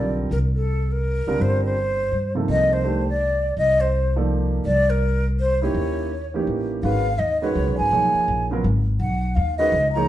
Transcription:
Already playing: B1 D3 G3 C4 F4 A#4 D5
0.31 C2 A#4
0.55 A4
0.92 A#4
1.27 C#2 D3 G3 C4 F4 A#4
1.40 G1 C5
1.65 C5
2.12 G2
2.35 C3 F3 A#3 D#4 A4
2.48 C2 D#5
2.73 C5
2.84 D#3 A3 D4 G4 C5
3.09 D5
3.57 C2 D#5
3.80 C5
4.16 F3 A#3 D#4 A4 D5
4.65 C2 D5
4.90 A#4
5.40 C5
5.62 A#3 C#4 D#4 E4 G4 C#5
5.74 D#2
6.34 E3 A#3 C#4 D#4 G4
6.47 A1
6.83 G#1 D#3 G#3 C#4 F#4 B4 F5
7.19 D#2 D#5
7.41 D#3 G#3 C#4 F#4 B4 C#5
7.55 C#2
7.67 B1
7.78 G#1 G#5
7.91 B1 F3 A#3 D#4 G#4 C#5
8.14 muted upright bass stroke
8.28 A#1
8.51 C#3 F#3 B3 F4 A#4
8.64 G#1
9.00 B1 F#5
9.35 D#2 F5
9.58 D#3 G#3 C#4 F#4 B4 D#5
9.72 C#2
9.93 F3 A#3 D#4 G#4 A#5
9.97 C#5

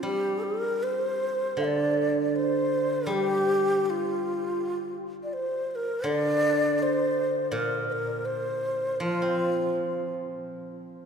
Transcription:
Already playing: D4 G4
0.03 G3 G4
0.43 A#4
0.83 C5
1.57 D3 F5
1.64 D5
2.36 C5
3.06 G3
3.11 G4
3.86 G4
3.90 F4
5.24 D5
5.33 C5
5.71 C5
5.75 A#4
6.04 D3 D5
6.79 C5 D5
7.52 A#2 A#4
7.88 A#4 C5
8.25 C5
9.00 F3 F4
9.22 C4

